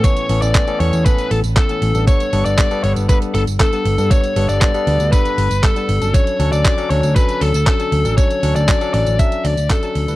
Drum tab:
HH |xxoxxxoxxxoxxxox|xxoxxxoxxxoxxxox|xxoxxxoxxxoxxxox|xxoxxxoxxxoxxxox|
TB |xx-xxx-xxx-xxx-x|xx-xxx-xxx-xxx-x|xx-xxx-xxx-xxx-x|xx-xxx-xxx-xxx-x|
CP |----x-------x---|----x-------x---|----x-------x---|----x-------x---|
BD |o---o---o---o---|o---o---o---o---|o---o---o---o---|o---o---o---o---|

HH |xxoxxxoxxxoxxxox|
TB |xx-xxx-xxx-xxx-x|
CP |----x-------x---|
BD |o---o---o---o---|